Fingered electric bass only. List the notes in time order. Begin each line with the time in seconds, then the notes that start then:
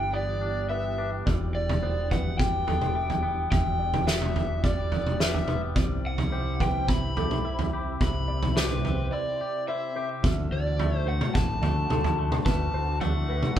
Already playing: G1
1.27 E1
3.52 E1
5.76 C2
8.01 C2
10.24 D2
10.51 D2
11.35 A1
11.62 D2
11.90 D2
12.46 D2
12.73 D2